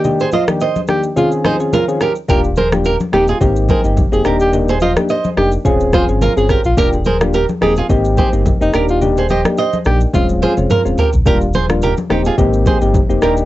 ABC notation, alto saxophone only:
X:1
M:4/4
L:1/16
Q:"Swing 16ths" 1/4=107
K:Eb
V:1 name="Alto saxophone"
z2 F z3 G z F z E z4 z | z2 B z3 G z3 B z2 A z G | z2 F z3 G z3 F z2 A z F | z2 B z3 A z3 G z2 E z F |
z2 G z3 G z F z F z4 z | z16 |]